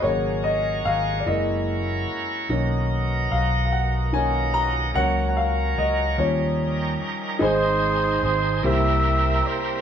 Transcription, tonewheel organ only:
X:1
M:6/8
L:1/8
Q:3/8=49
K:F#
V:1 name="Tonewheel organ"
[G,CFA]3 [F,C=EA]3 | [B,,F,DA]6 | [F,A,CA]3 [F,=G,CDA]3 | [K:Ab] [CEA]3 [G,B,C=EB]3 |]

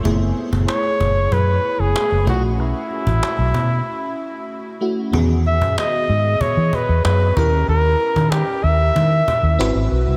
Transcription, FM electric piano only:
X:1
M:4/4
L:1/8
Q:1/4=94
K:E
V:1 name="FM electric piano"
[A,B,EG]6- [A,B,EG] [A,CE=F^F]- | [A,CE=F^F]6- [A,CE=F^F] [A,CEF] | [D,B,FG]6- [D,B,FG] [CE=G^A]- | [CE=G^A]6 [^B,EF=B]2 |]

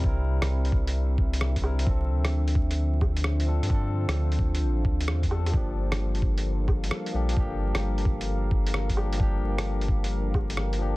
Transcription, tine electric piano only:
X:1
M:4/4
L:1/8
Q:"Swing 16ths" 1/4=131
K:Gdor
V:1 name="Tine electric piano"
[G,CEB]6- [G,CEB] [G,CEB] | [F,CDA]6- [F,CDA] [F,CDA] | [F,CDA]6- [F,CDA] [F,CDA] | [F,B,DG]6- [F,B,DG] [F,B,DG] |
[F,B,DG]6- [F,B,DG] [F,B,DG] | [F,B,DG]6- [F,B,DG] [F,B,DG] |]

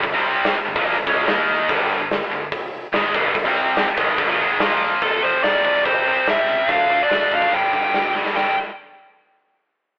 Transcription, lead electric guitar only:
X:1
M:4/4
L:1/16
Q:1/4=144
K:Gm
V:1 name="Lead electric guitar"
z16 | z16 | z16 | [K:F] A2 c2 d4 c4 e4 |
f3 d3 f2 g6 z2 | g2 z12 z2 |]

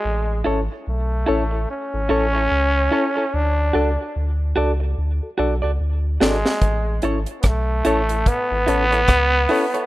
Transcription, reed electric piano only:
X:1
M:4/4
L:1/16
Q:"Swing 16ths" 1/4=73
K:A
V:1 name="Reed electric piano"
z2 [CEA] z3 [CEA] [EA] z [EA] [CEA] z3 [CEA] [EA] | z2 [DFA] z3 [DFA] [FA] z [FA] [DFA] z3 [DFA] [FA] | z2 [CEA] z3 [CEA] [EA] z [EA] [CEA] z3 [CEA] [EA] |]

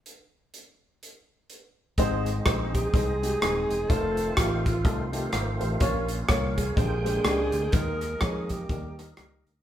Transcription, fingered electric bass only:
X:1
M:4/4
L:1/8
Q:"Swing" 1/4=125
K:Ab
V:1 name="Fingered electric bass" clef=bass
z8 | A,,,2 B,,,2 C,,2 E,,, _F,,, | F,,,2 =A,,,2 C,,2 _A,,, =A,,, | B,,,2 C,,2 B,,,2 D,, =D,, |
E,,2 F,,2 E,,2 D,, =D,, |]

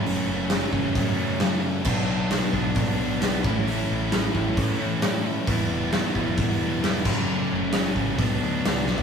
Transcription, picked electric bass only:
X:1
M:4/4
L:1/8
Q:1/4=133
K:Bm
V:1 name="Picked electric bass" clef=bass
F,,, F,,,2 F,,, F,,4 | B,,,3 B,,, B,,,3 A,,,- | A,,, A,,,2 A,,, A,,4 | E,,,3 E,,, E,,,3 F,,,- |
F,,, F,,,2 A,,, B,,, D,, C,, B,,, |]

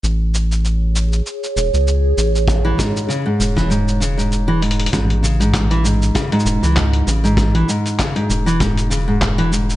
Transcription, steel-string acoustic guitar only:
X:1
M:4/4
L:1/16
Q:"Swing 16ths" 1/4=98
K:A
V:1 name="Steel-string acoustic guitar" clef=bass
z16 | z E, G,,2 C, G,,2 E, G,,2 C, G,,2 E, G,,2 | G,,2 C, G,,2 E, G,,2 C, G,,2 E, G,,2 C, G,,- | G,, E, G,,2 C, G,,2 E, G,,2 C, G,,2 E, G,,2 |]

